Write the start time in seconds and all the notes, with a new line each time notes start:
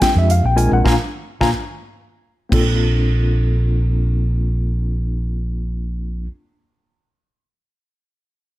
0.01 G#3 C4 D4 F4 G4 G5, muted fingered electric bass stroke, kick, snare, closed hi-hat
0.15 F2 E5
0.30 F5, closed hi-hat
0.44 A#1 G5
0.56 G#3 C4 D4 F4 A#4 G#5, closed hi-hat
0.71 A#1 F#5
0.84 A#1 A#3 D4 F4 F5 G#5 A#5, kick, snare
1.41 A#1 A#3 D4 F4 F5 G#5 A#5, kick, snare
2.49 A#1 A#3 C4 D4 F4, kick, crash
2.54 A4